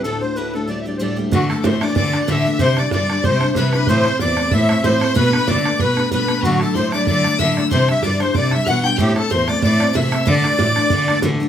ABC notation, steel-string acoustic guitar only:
X:1
M:4/4
L:1/8
Q:"Swing" 1/4=188
K:Dmix
V:1 name="Steel-string acoustic guitar"
[D,,A,,D,A,DF] [D,A,DF] [D,,A,,D,A,DF] [D,A,DF] [D,G,A,G] [D,G,A,G] [D,,A,,D,G,A,G] [D,G,A,G] | [D,,A,,E,A,DF] [E,A,DF] [D,,A,,E,A,DF] [E,A,DF] [E,A,DF] [E,A,DF] [D,,A,,E,A,DF] [E,A,DF] | [C,E,G,DE] [G,DE] [C,E,G,DE] [G,DE] [E,G,DE] [G,DE] [C,E,G,DE] [G,DE] | [A,,E,A,CE] [A,CE] [A,,E,A,CE] [A,CE] [E,A,CE] [A,CE] [A,,E,A,CE] [A,CE] |
[B,,G,A,B,D] [A,B,D] [B,,G,A,B,D] [A,B,D] [G,A,B,D] [A,B,D] [B,,G,A,B,D] [A,B,D] | [D,,A,,F,A,DE] [F,A,DE] [D,,A,,F,A,DE] [F,A,DE] [F,A,DE] [F,A,DE] [D,,A,,F,A,DE] [F,A,DE] | [C,E,G,DE] [G,DE] [C,E,G,DE] [G,DE] [E,G,DE] [G,DE] [C,E,G,DE] [G,DE] | [A,,E,A,CE] [A,CE] [A,,E,A,CE] [A,CE] [E,A,CE] [A,CE] [A,,E,A,CE] [A,CE] |
[D,,A,,E,A,DF] [E,A,DF] [D,,A,,E,A,DF] [E,A,DF] [E,A,DF] [E,A,DF] [D,,A,,E,A,DF] [E,A,DF] |]